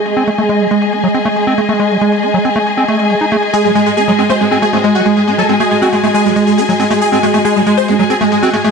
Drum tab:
HH |x-xxx-xxx-xxx-xx|x-xxx-xxx-xxx-xx|x-xxx-xxx-xxx-xx|x-xxx-xxx-xxx-xx|

HH |x-xxx-xxx-xxx-xx|